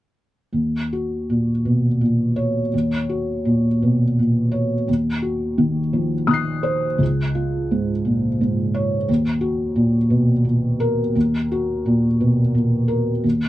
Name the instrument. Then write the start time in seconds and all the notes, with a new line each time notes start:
felt piano
0.53 D#2
0.93 F#4
1.30 A#2
1.65 B2
2.01 A#2
2.36 C#5
2.74 D#2
3.09 F#4
3.45 A#2
3.82 B2
4.19 A#2
4.52 C#5
4.88 D#2
5.22 F#4
5.58 D#3
5.93 F3
6.27 D#3 D#6 F#6
6.34 C7
6.63 C5
6.98 C#2
7.35 F4
7.71 G#2
8.05 A#2
8.41 G#2
8.74 C#5
9.09 D#2
9.41 F#4
9.76 A#2
10.10 B2
10.45 A#2
10.80 A#4
11.15 D#2
11.52 F#4
11.86 A#2
12.20 B2
12.55 A#2
12.88 A#4
13.24 D#2